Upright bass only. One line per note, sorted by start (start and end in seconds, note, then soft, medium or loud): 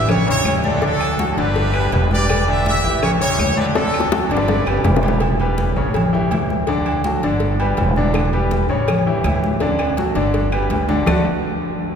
0.00 0.41 A1 loud
0.45 1.31 D2 loud
1.37 1.88 G1 loud
1.92 2.78 E1 loud
2.84 3.35 A1 medium
3.38 4.24 D2 loud
4.30 4.64 G1 loud
4.66 4.83 F#1 medium
4.84 5.70 E1 loud
5.76 6.28 A1 loud
6.31 7.17 D2 loud
7.23 7.74 G1 loud
7.78 8.64 E1 loud
8.69 9.20 A1 medium
9.24 10.10 D2 loud
10.15 10.67 G1 loud
10.71 11.03 D2 loud
11.07 11.24 D2 loud